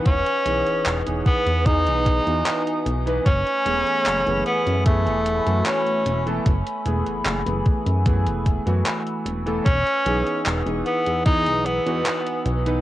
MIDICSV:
0, 0, Header, 1, 6, 480
1, 0, Start_track
1, 0, Tempo, 800000
1, 35, Time_signature, 4, 2, 24, 8
1, 7686, End_track
2, 0, Start_track
2, 0, Title_t, "Ambient pad"
2, 0, Program_c, 0, 92
2, 0, Note_on_c, 0, 71, 77
2, 0, Note_on_c, 0, 80, 74
2, 0, Note_on_c, 0, 87, 73
2, 1932, Note_off_c, 0, 71, 0
2, 1932, Note_off_c, 0, 87, 0
2, 1957, Note_on_c, 0, 57, 81
2, 1957, Note_on_c, 0, 83, 76
2, 1957, Note_on_c, 0, 88, 91
2, 5772, Note_off_c, 0, 57, 0
2, 5772, Note_off_c, 0, 83, 0
2, 5796, Note_on_c, 0, 71, 85
2, 5797, Note_on_c, 0, 87, 73
2, 7686, Note_off_c, 0, 71, 0
2, 7686, Note_off_c, 0, 80, 0
2, 7686, Note_off_c, 0, 87, 0
2, 7686, Note_off_c, 0, 88, 0
2, 7686, End_track
3, 0, Start_track
3, 0, Title_t, "Tenor saxophone"
3, 0, Program_c, 1, 66
3, 40, Note_on_c, 1, 61, 121
3, 574, Note_off_c, 1, 61, 0
3, 758, Note_on_c, 1, 59, 108
3, 998, Note_on_c, 1, 63, 111
3, 1007, Note_off_c, 1, 59, 0
3, 1717, Note_off_c, 1, 63, 0
3, 1956, Note_on_c, 1, 61, 127
3, 2652, Note_off_c, 1, 61, 0
3, 2676, Note_on_c, 1, 59, 101
3, 2899, Note_off_c, 1, 59, 0
3, 2914, Note_on_c, 1, 57, 100
3, 3394, Note_on_c, 1, 61, 96
3, 3403, Note_off_c, 1, 57, 0
3, 3759, Note_off_c, 1, 61, 0
3, 5795, Note_on_c, 1, 61, 125
3, 6251, Note_off_c, 1, 61, 0
3, 6516, Note_on_c, 1, 59, 92
3, 6739, Note_off_c, 1, 59, 0
3, 6753, Note_on_c, 1, 63, 126
3, 6995, Note_on_c, 1, 59, 97
3, 7004, Note_off_c, 1, 63, 0
3, 7475, Note_off_c, 1, 59, 0
3, 7686, End_track
4, 0, Start_track
4, 0, Title_t, "Electric grand piano"
4, 0, Program_c, 2, 2
4, 0, Note_on_c, 2, 52, 91
4, 0, Note_on_c, 2, 59, 79
4, 0, Note_on_c, 2, 63, 83
4, 0, Note_on_c, 2, 71, 99
4, 61, Note_off_c, 2, 52, 0
4, 63, Note_off_c, 2, 59, 0
4, 65, Note_off_c, 2, 63, 0
4, 66, Note_off_c, 2, 71, 0
4, 271, Note_on_c, 2, 52, 72
4, 273, Note_on_c, 2, 59, 63
4, 276, Note_on_c, 2, 63, 67
4, 279, Note_on_c, 2, 68, 81
4, 608, Note_off_c, 2, 52, 0
4, 609, Note_off_c, 2, 59, 0
4, 610, Note_off_c, 2, 63, 0
4, 612, Note_off_c, 2, 68, 0
4, 635, Note_on_c, 2, 52, 75
4, 638, Note_on_c, 2, 59, 67
4, 642, Note_on_c, 2, 63, 66
4, 645, Note_on_c, 2, 68, 83
4, 966, Note_off_c, 2, 52, 0
4, 967, Note_off_c, 2, 59, 0
4, 969, Note_off_c, 2, 63, 0
4, 970, Note_off_c, 2, 68, 0
4, 990, Note_on_c, 2, 52, 82
4, 994, Note_on_c, 2, 59, 77
4, 996, Note_on_c, 2, 63, 81
4, 1000, Note_on_c, 2, 68, 97
4, 1327, Note_off_c, 2, 52, 0
4, 1329, Note_off_c, 2, 59, 0
4, 1330, Note_off_c, 2, 63, 0
4, 1332, Note_off_c, 2, 68, 0
4, 1355, Note_on_c, 2, 52, 77
4, 1359, Note_on_c, 2, 59, 69
4, 1361, Note_on_c, 2, 63, 71
4, 1364, Note_on_c, 2, 66, 83
4, 1807, Note_off_c, 2, 52, 0
4, 1809, Note_off_c, 2, 59, 0
4, 1810, Note_off_c, 2, 63, 0
4, 1812, Note_off_c, 2, 66, 0
4, 1836, Note_on_c, 2, 52, 86
4, 1839, Note_on_c, 2, 59, 82
4, 1842, Note_on_c, 2, 63, 84
4, 1845, Note_on_c, 2, 71, 98
4, 1940, Note_off_c, 2, 52, 0
4, 1941, Note_off_c, 2, 59, 0
4, 1943, Note_off_c, 2, 63, 0
4, 1944, Note_off_c, 2, 71, 0
4, 2190, Note_on_c, 2, 52, 70
4, 2193, Note_on_c, 2, 57, 71
4, 2196, Note_on_c, 2, 59, 67
4, 2199, Note_on_c, 2, 68, 82
4, 2527, Note_off_c, 2, 52, 0
4, 2528, Note_off_c, 2, 57, 0
4, 2530, Note_off_c, 2, 59, 0
4, 2532, Note_off_c, 2, 68, 0
4, 2556, Note_on_c, 2, 52, 74
4, 2559, Note_on_c, 2, 57, 65
4, 2563, Note_on_c, 2, 59, 69
4, 2565, Note_on_c, 2, 68, 81
4, 2886, Note_off_c, 2, 52, 0
4, 2887, Note_off_c, 2, 57, 0
4, 2889, Note_off_c, 2, 59, 0
4, 2890, Note_off_c, 2, 68, 0
4, 2910, Note_on_c, 2, 52, 83
4, 2913, Note_on_c, 2, 57, 80
4, 2917, Note_on_c, 2, 59, 77
4, 2919, Note_on_c, 2, 68, 91
4, 3247, Note_off_c, 2, 52, 0
4, 3249, Note_off_c, 2, 57, 0
4, 3250, Note_off_c, 2, 59, 0
4, 3252, Note_off_c, 2, 68, 0
4, 3275, Note_on_c, 2, 52, 79
4, 3277, Note_on_c, 2, 57, 73
4, 3281, Note_on_c, 2, 59, 67
4, 3284, Note_on_c, 2, 66, 87
4, 3728, Note_off_c, 2, 52, 0
4, 3729, Note_off_c, 2, 57, 0
4, 3730, Note_off_c, 2, 59, 0
4, 3732, Note_off_c, 2, 66, 0
4, 3756, Note_on_c, 2, 52, 86
4, 3759, Note_on_c, 2, 57, 80
4, 3762, Note_on_c, 2, 59, 83
4, 3765, Note_on_c, 2, 69, 104
4, 3901, Note_off_c, 2, 52, 0
4, 3903, Note_off_c, 2, 57, 0
4, 3904, Note_off_c, 2, 59, 0
4, 3906, Note_off_c, 2, 69, 0
4, 4113, Note_on_c, 2, 52, 74
4, 4116, Note_on_c, 2, 57, 70
4, 4119, Note_on_c, 2, 59, 66
4, 4122, Note_on_c, 2, 68, 79
4, 4449, Note_off_c, 2, 52, 0
4, 4450, Note_off_c, 2, 57, 0
4, 4451, Note_off_c, 2, 59, 0
4, 4453, Note_off_c, 2, 68, 0
4, 4475, Note_on_c, 2, 52, 73
4, 4478, Note_on_c, 2, 57, 65
4, 4481, Note_on_c, 2, 59, 72
4, 4485, Note_on_c, 2, 68, 80
4, 4805, Note_off_c, 2, 52, 0
4, 4807, Note_off_c, 2, 57, 0
4, 4808, Note_off_c, 2, 59, 0
4, 4810, Note_off_c, 2, 68, 0
4, 4831, Note_on_c, 2, 52, 79
4, 4833, Note_on_c, 2, 57, 74
4, 4837, Note_on_c, 2, 59, 77
4, 4839, Note_on_c, 2, 68, 93
4, 5168, Note_off_c, 2, 52, 0
4, 5169, Note_off_c, 2, 57, 0
4, 5170, Note_off_c, 2, 59, 0
4, 5172, Note_off_c, 2, 68, 0
4, 5194, Note_on_c, 2, 52, 77
4, 5198, Note_on_c, 2, 57, 74
4, 5201, Note_on_c, 2, 59, 71
4, 5204, Note_on_c, 2, 66, 86
4, 5647, Note_off_c, 2, 52, 0
4, 5649, Note_off_c, 2, 57, 0
4, 5650, Note_off_c, 2, 59, 0
4, 5652, Note_off_c, 2, 66, 0
4, 5676, Note_on_c, 2, 52, 92
4, 5679, Note_on_c, 2, 57, 83
4, 5681, Note_on_c, 2, 59, 80
4, 5684, Note_on_c, 2, 69, 100
4, 5780, Note_off_c, 2, 52, 0
4, 5781, Note_off_c, 2, 57, 0
4, 5782, Note_off_c, 2, 59, 0
4, 5784, Note_off_c, 2, 69, 0
4, 6032, Note_on_c, 2, 52, 73
4, 6035, Note_on_c, 2, 59, 68
4, 6037, Note_on_c, 2, 63, 67
4, 6040, Note_on_c, 2, 68, 82
4, 6368, Note_off_c, 2, 52, 0
4, 6369, Note_off_c, 2, 59, 0
4, 6370, Note_off_c, 2, 63, 0
4, 6372, Note_off_c, 2, 68, 0
4, 6395, Note_on_c, 2, 52, 74
4, 6398, Note_on_c, 2, 59, 68
4, 6401, Note_on_c, 2, 63, 67
4, 6404, Note_on_c, 2, 68, 82
4, 6725, Note_off_c, 2, 52, 0
4, 6727, Note_off_c, 2, 59, 0
4, 6729, Note_off_c, 2, 63, 0
4, 6730, Note_off_c, 2, 68, 0
4, 6750, Note_on_c, 2, 52, 86
4, 6754, Note_on_c, 2, 59, 75
4, 6757, Note_on_c, 2, 63, 76
4, 6760, Note_on_c, 2, 68, 93
4, 7087, Note_off_c, 2, 52, 0
4, 7089, Note_off_c, 2, 59, 0
4, 7091, Note_off_c, 2, 63, 0
4, 7092, Note_off_c, 2, 68, 0
4, 7114, Note_on_c, 2, 52, 76
4, 7117, Note_on_c, 2, 59, 74
4, 7120, Note_on_c, 2, 63, 70
4, 7123, Note_on_c, 2, 66, 87
4, 7567, Note_off_c, 2, 52, 0
4, 7568, Note_off_c, 2, 59, 0
4, 7570, Note_off_c, 2, 63, 0
4, 7572, Note_off_c, 2, 66, 0
4, 7595, Note_on_c, 2, 52, 88
4, 7599, Note_on_c, 2, 59, 82
4, 7601, Note_on_c, 2, 63, 87
4, 7604, Note_on_c, 2, 71, 96
4, 7686, Note_off_c, 2, 52, 0
4, 7686, Note_off_c, 2, 59, 0
4, 7686, Note_off_c, 2, 63, 0
4, 7686, Note_off_c, 2, 71, 0
4, 7686, End_track
5, 0, Start_track
5, 0, Title_t, "Analog synth bass"
5, 0, Program_c, 3, 38
5, 36, Note_on_c, 3, 28, 95
5, 140, Note_off_c, 3, 28, 0
5, 274, Note_on_c, 3, 35, 91
5, 380, Note_off_c, 3, 35, 0
5, 515, Note_on_c, 3, 28, 90
5, 620, Note_off_c, 3, 28, 0
5, 640, Note_on_c, 3, 28, 97
5, 738, Note_off_c, 3, 28, 0
5, 878, Note_on_c, 3, 40, 82
5, 1119, Note_on_c, 3, 35, 92
5, 1128, Note_off_c, 3, 40, 0
5, 1321, Note_off_c, 3, 35, 0
5, 1360, Note_on_c, 3, 40, 77
5, 1458, Note_off_c, 3, 40, 0
5, 1715, Note_on_c, 3, 35, 90
5, 1919, Note_off_c, 3, 35, 0
5, 1956, Note_on_c, 3, 30, 99
5, 2061, Note_off_c, 3, 30, 0
5, 2196, Note_on_c, 3, 28, 88
5, 2300, Note_off_c, 3, 28, 0
5, 2435, Note_on_c, 3, 30, 91
5, 2540, Note_off_c, 3, 30, 0
5, 2560, Note_on_c, 3, 30, 100
5, 2657, Note_off_c, 3, 30, 0
5, 2798, Note_on_c, 3, 42, 81
5, 3039, Note_on_c, 3, 28, 92
5, 3048, Note_off_c, 3, 42, 0
5, 3240, Note_off_c, 3, 28, 0
5, 3279, Note_on_c, 3, 42, 81
5, 3377, Note_off_c, 3, 42, 0
5, 3633, Note_on_c, 3, 28, 95
5, 3838, Note_off_c, 3, 28, 0
5, 3875, Note_on_c, 3, 30, 104
5, 3980, Note_off_c, 3, 30, 0
5, 4113, Note_on_c, 3, 28, 93
5, 4219, Note_off_c, 3, 28, 0
5, 4238, Note_on_c, 3, 30, 42
5, 4332, Note_off_c, 3, 30, 0
5, 4354, Note_on_c, 3, 30, 93
5, 4459, Note_off_c, 3, 30, 0
5, 4477, Note_on_c, 3, 30, 98
5, 4576, Note_off_c, 3, 30, 0
5, 4718, Note_on_c, 3, 42, 82
5, 4959, Note_on_c, 3, 28, 92
5, 4968, Note_off_c, 3, 42, 0
5, 5160, Note_off_c, 3, 28, 0
5, 5199, Note_on_c, 3, 42, 81
5, 5297, Note_off_c, 3, 42, 0
5, 5553, Note_on_c, 3, 28, 89
5, 5758, Note_off_c, 3, 28, 0
5, 5796, Note_on_c, 3, 28, 100
5, 5900, Note_off_c, 3, 28, 0
5, 6034, Note_on_c, 3, 35, 91
5, 6140, Note_off_c, 3, 35, 0
5, 6274, Note_on_c, 3, 28, 91
5, 6380, Note_off_c, 3, 28, 0
5, 6398, Note_on_c, 3, 28, 96
5, 6496, Note_off_c, 3, 28, 0
5, 6640, Note_on_c, 3, 40, 86
5, 6879, Note_on_c, 3, 35, 91
5, 6888, Note_off_c, 3, 40, 0
5, 7080, Note_off_c, 3, 35, 0
5, 7119, Note_on_c, 3, 40, 82
5, 7217, Note_off_c, 3, 40, 0
5, 7473, Note_on_c, 3, 35, 94
5, 7678, Note_off_c, 3, 35, 0
5, 7686, End_track
6, 0, Start_track
6, 0, Title_t, "Drums"
6, 34, Note_on_c, 9, 42, 91
6, 36, Note_on_c, 9, 36, 120
6, 94, Note_off_c, 9, 42, 0
6, 96, Note_off_c, 9, 36, 0
6, 158, Note_on_c, 9, 42, 38
6, 218, Note_off_c, 9, 42, 0
6, 274, Note_on_c, 9, 42, 65
6, 334, Note_off_c, 9, 42, 0
6, 399, Note_on_c, 9, 42, 38
6, 459, Note_off_c, 9, 42, 0
6, 515, Note_on_c, 9, 39, 127
6, 515, Note_on_c, 9, 42, 93
6, 575, Note_off_c, 9, 39, 0
6, 575, Note_off_c, 9, 42, 0
6, 640, Note_on_c, 9, 42, 39
6, 700, Note_off_c, 9, 42, 0
6, 755, Note_on_c, 9, 36, 105
6, 756, Note_on_c, 9, 42, 36
6, 815, Note_off_c, 9, 36, 0
6, 816, Note_off_c, 9, 42, 0
6, 880, Note_on_c, 9, 42, 39
6, 940, Note_off_c, 9, 42, 0
6, 996, Note_on_c, 9, 36, 125
6, 996, Note_on_c, 9, 42, 84
6, 1056, Note_off_c, 9, 36, 0
6, 1056, Note_off_c, 9, 42, 0
6, 1120, Note_on_c, 9, 42, 37
6, 1180, Note_off_c, 9, 42, 0
6, 1236, Note_on_c, 9, 36, 58
6, 1237, Note_on_c, 9, 42, 63
6, 1296, Note_off_c, 9, 36, 0
6, 1297, Note_off_c, 9, 42, 0
6, 1362, Note_on_c, 9, 42, 38
6, 1422, Note_off_c, 9, 42, 0
6, 1477, Note_on_c, 9, 39, 120
6, 1477, Note_on_c, 9, 42, 91
6, 1537, Note_off_c, 9, 39, 0
6, 1537, Note_off_c, 9, 42, 0
6, 1602, Note_on_c, 9, 42, 37
6, 1662, Note_off_c, 9, 42, 0
6, 1717, Note_on_c, 9, 42, 68
6, 1777, Note_off_c, 9, 42, 0
6, 1842, Note_on_c, 9, 42, 39
6, 1902, Note_off_c, 9, 42, 0
6, 1956, Note_on_c, 9, 36, 116
6, 1957, Note_on_c, 9, 42, 90
6, 2016, Note_off_c, 9, 36, 0
6, 2017, Note_off_c, 9, 42, 0
6, 2081, Note_on_c, 9, 42, 37
6, 2141, Note_off_c, 9, 42, 0
6, 2196, Note_on_c, 9, 42, 58
6, 2256, Note_off_c, 9, 42, 0
6, 2320, Note_on_c, 9, 42, 38
6, 2380, Note_off_c, 9, 42, 0
6, 2436, Note_on_c, 9, 39, 121
6, 2436, Note_on_c, 9, 42, 94
6, 2496, Note_off_c, 9, 39, 0
6, 2496, Note_off_c, 9, 42, 0
6, 2560, Note_on_c, 9, 42, 40
6, 2620, Note_off_c, 9, 42, 0
6, 2675, Note_on_c, 9, 42, 35
6, 2735, Note_off_c, 9, 42, 0
6, 2800, Note_on_c, 9, 42, 37
6, 2860, Note_off_c, 9, 42, 0
6, 2915, Note_on_c, 9, 42, 88
6, 2916, Note_on_c, 9, 36, 116
6, 2975, Note_off_c, 9, 42, 0
6, 2976, Note_off_c, 9, 36, 0
6, 3040, Note_on_c, 9, 42, 38
6, 3100, Note_off_c, 9, 42, 0
6, 3156, Note_on_c, 9, 42, 63
6, 3216, Note_off_c, 9, 42, 0
6, 3280, Note_on_c, 9, 42, 36
6, 3340, Note_off_c, 9, 42, 0
6, 3395, Note_on_c, 9, 39, 111
6, 3395, Note_on_c, 9, 42, 87
6, 3455, Note_off_c, 9, 39, 0
6, 3455, Note_off_c, 9, 42, 0
6, 3520, Note_on_c, 9, 42, 37
6, 3580, Note_off_c, 9, 42, 0
6, 3636, Note_on_c, 9, 42, 64
6, 3696, Note_off_c, 9, 42, 0
6, 3760, Note_on_c, 9, 42, 38
6, 3820, Note_off_c, 9, 42, 0
6, 3875, Note_on_c, 9, 42, 90
6, 3876, Note_on_c, 9, 36, 114
6, 3935, Note_off_c, 9, 42, 0
6, 3936, Note_off_c, 9, 36, 0
6, 4000, Note_on_c, 9, 42, 37
6, 4060, Note_off_c, 9, 42, 0
6, 4114, Note_on_c, 9, 42, 61
6, 4174, Note_off_c, 9, 42, 0
6, 4239, Note_on_c, 9, 42, 37
6, 4299, Note_off_c, 9, 42, 0
6, 4353, Note_on_c, 9, 39, 117
6, 4353, Note_on_c, 9, 42, 88
6, 4413, Note_off_c, 9, 39, 0
6, 4413, Note_off_c, 9, 42, 0
6, 4479, Note_on_c, 9, 42, 39
6, 4539, Note_off_c, 9, 42, 0
6, 4594, Note_on_c, 9, 42, 36
6, 4596, Note_on_c, 9, 36, 96
6, 4654, Note_off_c, 9, 42, 0
6, 4656, Note_off_c, 9, 36, 0
6, 4719, Note_on_c, 9, 42, 39
6, 4779, Note_off_c, 9, 42, 0
6, 4835, Note_on_c, 9, 42, 82
6, 4836, Note_on_c, 9, 36, 109
6, 4895, Note_off_c, 9, 42, 0
6, 4896, Note_off_c, 9, 36, 0
6, 4959, Note_on_c, 9, 42, 36
6, 5019, Note_off_c, 9, 42, 0
6, 5075, Note_on_c, 9, 36, 56
6, 5076, Note_on_c, 9, 42, 63
6, 5135, Note_off_c, 9, 36, 0
6, 5136, Note_off_c, 9, 42, 0
6, 5200, Note_on_c, 9, 42, 36
6, 5260, Note_off_c, 9, 42, 0
6, 5316, Note_on_c, 9, 39, 116
6, 5316, Note_on_c, 9, 42, 86
6, 5376, Note_off_c, 9, 39, 0
6, 5376, Note_off_c, 9, 42, 0
6, 5440, Note_on_c, 9, 42, 38
6, 5500, Note_off_c, 9, 42, 0
6, 5556, Note_on_c, 9, 42, 62
6, 5616, Note_off_c, 9, 42, 0
6, 5680, Note_on_c, 9, 42, 36
6, 5740, Note_off_c, 9, 42, 0
6, 5796, Note_on_c, 9, 36, 110
6, 5796, Note_on_c, 9, 42, 94
6, 5856, Note_off_c, 9, 36, 0
6, 5856, Note_off_c, 9, 42, 0
6, 5920, Note_on_c, 9, 42, 38
6, 5980, Note_off_c, 9, 42, 0
6, 6036, Note_on_c, 9, 42, 62
6, 6096, Note_off_c, 9, 42, 0
6, 6160, Note_on_c, 9, 42, 40
6, 6220, Note_off_c, 9, 42, 0
6, 6276, Note_on_c, 9, 39, 114
6, 6276, Note_on_c, 9, 42, 93
6, 6336, Note_off_c, 9, 39, 0
6, 6336, Note_off_c, 9, 42, 0
6, 6400, Note_on_c, 9, 42, 41
6, 6460, Note_off_c, 9, 42, 0
6, 6516, Note_on_c, 9, 42, 35
6, 6576, Note_off_c, 9, 42, 0
6, 6639, Note_on_c, 9, 42, 39
6, 6699, Note_off_c, 9, 42, 0
6, 6754, Note_on_c, 9, 42, 85
6, 6756, Note_on_c, 9, 36, 115
6, 6814, Note_off_c, 9, 42, 0
6, 6816, Note_off_c, 9, 36, 0
6, 6878, Note_on_c, 9, 42, 37
6, 6938, Note_off_c, 9, 42, 0
6, 6995, Note_on_c, 9, 42, 65
6, 7055, Note_off_c, 9, 42, 0
6, 7119, Note_on_c, 9, 42, 37
6, 7179, Note_off_c, 9, 42, 0
6, 7236, Note_on_c, 9, 39, 115
6, 7236, Note_on_c, 9, 42, 90
6, 7296, Note_off_c, 9, 39, 0
6, 7296, Note_off_c, 9, 42, 0
6, 7360, Note_on_c, 9, 42, 38
6, 7420, Note_off_c, 9, 42, 0
6, 7474, Note_on_c, 9, 42, 62
6, 7534, Note_off_c, 9, 42, 0
6, 7598, Note_on_c, 9, 42, 40
6, 7658, Note_off_c, 9, 42, 0
6, 7686, End_track
0, 0, End_of_file